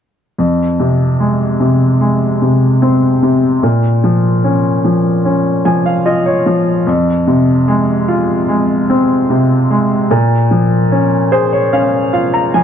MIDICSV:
0, 0, Header, 1, 2, 480
1, 0, Start_track
1, 0, Key_signature, -4, "minor"
1, 0, Tempo, 810811
1, 228, Time_signature, 4, 2, 24, 8
1, 7480, End_track
2, 0, Start_track
2, 0, Title_t, "Upright piano"
2, 0, Program_c, 0, 0
2, 228, Note_on_c, 0, 41, 40
2, 356, Control_c, 0, 64, 127
2, 471, Note_on_c, 0, 48, 31
2, 711, Note_on_c, 0, 56, 30
2, 940, Note_off_c, 0, 48, 0
2, 949, Note_on_c, 0, 48, 32
2, 1180, Note_off_c, 0, 56, 0
2, 1189, Note_on_c, 0, 56, 35
2, 1422, Note_off_c, 0, 48, 0
2, 1431, Note_on_c, 0, 48, 30
2, 1669, Note_on_c, 0, 60, 34
2, 1901, Note_off_c, 0, 48, 0
2, 1910, Note_on_c, 0, 48, 34
2, 2124, Note_off_c, 0, 41, 0
2, 2125, Note_off_c, 0, 56, 0
2, 2134, Note_off_c, 0, 60, 0
2, 2142, Note_off_c, 0, 48, 0
2, 2150, Note_on_c, 0, 46, 39
2, 2156, Control_c, 0, 64, 0
2, 2252, Control_c, 0, 64, 127
2, 2390, Note_on_c, 0, 53, 35
2, 2629, Note_on_c, 0, 61, 35
2, 2860, Note_off_c, 0, 53, 0
2, 2869, Note_on_c, 0, 53, 34
2, 3101, Note_off_c, 0, 61, 0
2, 3110, Note_on_c, 0, 61, 38
2, 3338, Note_off_c, 0, 53, 0
2, 3346, Note_on_c, 0, 80, 45
2, 3347, Note_on_c, 0, 53, 34
2, 3459, Note_off_c, 0, 80, 0
2, 3467, Note_on_c, 0, 77, 45
2, 3579, Note_off_c, 0, 77, 0
2, 3585, Note_on_c, 0, 75, 49
2, 3586, Note_on_c, 0, 65, 39
2, 3698, Note_off_c, 0, 75, 0
2, 3706, Note_on_c, 0, 73, 46
2, 3817, Note_off_c, 0, 53, 0
2, 3826, Note_on_c, 0, 53, 39
2, 4043, Note_off_c, 0, 73, 0
2, 4045, Note_off_c, 0, 46, 0
2, 4045, Note_off_c, 0, 61, 0
2, 4052, Note_off_c, 0, 65, 0
2, 4060, Note_off_c, 0, 53, 0
2, 4065, Note_on_c, 0, 41, 47
2, 4075, Control_c, 0, 64, 0
2, 4185, Control_c, 0, 64, 127
2, 4305, Note_on_c, 0, 48, 38
2, 4546, Note_on_c, 0, 56, 42
2, 4785, Note_on_c, 0, 65, 42
2, 5014, Note_off_c, 0, 56, 0
2, 5023, Note_on_c, 0, 56, 42
2, 5243, Note_off_c, 0, 48, 0
2, 5267, Note_on_c, 0, 60, 43
2, 5505, Note_on_c, 0, 48, 38
2, 5723, Note_off_c, 0, 65, 0
2, 5736, Note_off_c, 0, 56, 0
2, 5745, Note_on_c, 0, 56, 38
2, 5963, Note_off_c, 0, 41, 0
2, 5966, Note_off_c, 0, 60, 0
2, 5972, Note_off_c, 0, 48, 0
2, 5979, Note_off_c, 0, 56, 0
2, 5984, Note_on_c, 0, 46, 48
2, 5995, Control_c, 0, 64, 0
2, 6109, Control_c, 0, 64, 127
2, 6222, Note_on_c, 0, 53, 37
2, 6463, Note_on_c, 0, 61, 41
2, 6700, Note_on_c, 0, 68, 43
2, 6702, Note_on_c, 0, 72, 53
2, 6816, Note_off_c, 0, 72, 0
2, 6824, Note_on_c, 0, 73, 49
2, 6934, Note_off_c, 0, 61, 0
2, 6938, Note_off_c, 0, 73, 0
2, 6942, Note_on_c, 0, 61, 46
2, 6943, Note_on_c, 0, 77, 52
2, 7161, Note_off_c, 0, 53, 0
2, 7168, Note_off_c, 0, 77, 0
2, 7182, Note_on_c, 0, 65, 40
2, 7182, Note_on_c, 0, 77, 49
2, 7296, Note_off_c, 0, 77, 0
2, 7303, Note_on_c, 0, 82, 49
2, 7417, Note_off_c, 0, 82, 0
2, 7424, Note_on_c, 0, 53, 39
2, 7424, Note_on_c, 0, 80, 53
2, 7480, Note_off_c, 0, 46, 0
2, 7480, Note_off_c, 0, 53, 0
2, 7480, Note_off_c, 0, 61, 0
2, 7480, Note_off_c, 0, 65, 0
2, 7480, Note_off_c, 0, 68, 0
2, 7480, Note_off_c, 0, 80, 0
2, 7480, End_track
0, 0, End_of_file